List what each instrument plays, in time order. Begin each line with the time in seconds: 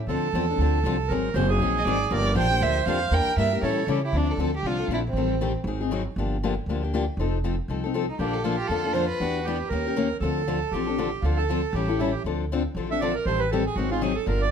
0.07 upright bass D2, steel-string acoustic guitar D3 F3 C4 D4 A4, accordion A4
0.33 upright bass E2, steel-string acoustic guitar D3 F3 C4 D4 A4
0.50 steel-string acoustic guitar C4 D4 A4
0.58 upright bass D2, steel-string acoustic guitar D3 F3 C4 D4 A4
0.84 upright bass C2, steel-string acoustic guitar D3 F3 C4 D4 A4
1.08 upright bass G#1, steel-string acoustic guitar D#3 F#3 C4 D#4 G#4, accordion A#4
1.34 upright bass F#1, steel-string acoustic guitar D#3 F#3 C4 D#4 G#4, accordion C5
1.49 steel-string acoustic guitar C4 D#4 G#4, accordion G#4
1.59 upright bass A#1, steel-string acoustic guitar D#3 F#3 C4 D#4 G#4
1.78 violin D#5
1.85 upright bass G#1, steel-string acoustic guitar D#3 F#3 C4 D#4 G#4, violin D5
2.11 upright bass G1, steel-string acoustic guitar D3 F3 A#3 D4 G4, accordion A#4, violin D5
2.35 upright bass A#1, steel-string acoustic guitar D3 F3 A#3 D4 G4, accordion C5, violin G5
2.50 steel-string acoustic guitar A#3 D4 G4
2.61 upright bass D2, steel-string acoustic guitar D3 F3 A#3 D4 G4, violin E5
2.86 upright bass F2, steel-string acoustic guitar D3 F3 A#3 D4 G4, violin F5
3.11 upright bass E2, steel-string acoustic guitar E3 A#3 D4 G4, accordion A#4, violin G5
3.26 muted upright bass stroke
3.37 upright bass G2, steel-string acoustic guitar E3 A#3 D4 G4, violin E5
3.53 steel-string acoustic guitar A#3 D4 G4
3.62 upright bass A2, steel-string acoustic guitar E3 G3 C#4 E4 A4, accordion A4, violin C#5
3.87 upright bass C#3, steel-string acoustic guitar E3 G3 C#4 E4 A4, accordion G4
4.04 violin E4, accordion G4
4.12 upright bass D2, steel-string acoustic guitar D3 F3 C4 D4 A4
4.17 violin D4
4.31 violin A4
4.37 upright bass D2, steel-string acoustic guitar D3 F3 C4 D4 A4
4.56 violin G4
4.63 upright bass C2, steel-string acoustic guitar D3 F3 C4 D4 A4, violin F4
4.80 steel-string acoustic guitar C4 D4 A4
4.88 upright bass A#1, steel-string acoustic guitar D3 F3 C4 D4
4.92 violin E4, steel-string acoustic guitar A4
5.08 violin C4
5.13 upright bass A1, steel-string acoustic guitar D#3 G3
5.17 steel-string acoustic guitar C4 G4 A4
5.41 steel-string acoustic guitar D#3 G3 C4 G4 A4
5.64 upright bass G#1, steel-string acoustic guitar D#3 F#3 C4 G#4
5.68 steel-string acoustic guitar D#4
5.81 steel-string acoustic guitar C4 D#4 G#4
5.91 steel-string acoustic guitar D#3 F#3 C4 D#4 G#4
6.16 upright bass G1, steel-string acoustic guitar D3 F3 A#3 D4 G4
6.43 steel-string acoustic guitar D3 F3 A#3 D4 G4
6.66 upright bass D2, steel-string acoustic guitar D3 F3 A#3 D4
6.70 steel-string acoustic guitar G4
6.83 steel-string acoustic guitar A#3 D4 G4
6.93 steel-string acoustic guitar D3 F3 A#3 D4 G4
7.17 upright bass F1, steel-string acoustic guitar F3 C4 D#4 A4
7.44 steel-string acoustic guitar F3 C4 D#4 A4
7.68 upright bass C2, steel-string acoustic guitar F3 C4 D#4 A4
7.84 steel-string acoustic guitar C4 D#4 A4
7.94 steel-string acoustic guitar F3 C4 D#4 A4
8.09 violin D#4
8.19 upright bass A#1, steel-string acoustic guitar D3 F3 A#3 D4 A4, violin D4, accordion G4
8.33 violin A4
8.44 steel-string acoustic guitar D3 F3 A#3 D4 A4, accordion F4
8.58 violin G4
8.68 upright bass F2, steel-string acoustic guitar D3 F3 A#3 D4 A4, violin A4
8.85 steel-string acoustic guitar A#3 D4 A4
8.94 steel-string acoustic guitar D3 F3 A#3 D4 A4, violin C5
9.09 violin B4
9.20 upright bass E2, steel-string acoustic guitar E3 B3 D4 G4, accordion F#4
9.44 steel-string acoustic guitar E3 B3 D4 G4, accordion G4
9.69 upright bass D#2, steel-string acoustic guitar D#3 A#3 G4, accordion A#4
9.73 steel-string acoustic guitar C#4 A#4
9.87 steel-string acoustic guitar C#4 G4 A#4
9.96 steel-string acoustic guitar D#3 A#3 C#4 G4 A#4
10.20 upright bass D2, steel-string acoustic guitar D3 F3 C4 D4 A4, accordion A4
10.47 steel-string acoustic guitar D3 F3 C4 D4 A4
10.72 upright bass A1, steel-string acoustic guitar D3 F3 C4 D4, accordion G4
10.76 steel-string acoustic guitar A4
10.87 steel-string acoustic guitar C4 D4 A4
10.98 steel-string acoustic guitar D3 F3 C4 D4 A4
11.22 upright bass D2, steel-string acoustic guitar D3 F3 C4 D4 A4, accordion F4
11.37 accordion A4
11.49 steel-string acoustic guitar D3 F3 C4 D4 A4
11.73 upright bass A1, steel-string acoustic guitar E3 G3 C#4 E4 A4, accordion G4
11.88 steel-string acoustic guitar C#4 E4 A4
11.99 steel-string acoustic guitar E3 G3 C#4 E4 A4, accordion E4
12.12 accordion G4
12.24 upright bass D2, steel-string acoustic guitar D3 F3 C4 D4 A4
12.52 steel-string acoustic guitar D3 F3 C4 D4 A4
12.75 upright bass A1, steel-string acoustic guitar D3 F3 C4 D4 A4
12.91 steel-string acoustic guitar C4 D4 A4, accordion E5
13.01 steel-string acoustic guitar D3 F3 C4 D4 A4, accordion D5
13.15 accordion A#4
13.25 upright bass A1, steel-string acoustic guitar D#3 G3 C4 G4 A4, accordion C5
13.39 accordion B4
13.51 steel-string acoustic guitar D#3 G3 C4 G4 A4, accordion A4
13.66 accordion G#4
13.76 upright bass G#1, steel-string acoustic guitar D#3 F#3 C4 D#4 G#4, accordion F#4
13.91 steel-string acoustic guitar C4 D#4 G#4, accordion F4
14.01 steel-string acoustic guitar D#3 F#3 C4 D#4 G#4, accordion G#4
14.15 accordion A4
14.26 upright bass G1, steel-string acoustic guitar D3 F3 A#3 D4 G4, accordion A#4
14.41 accordion D5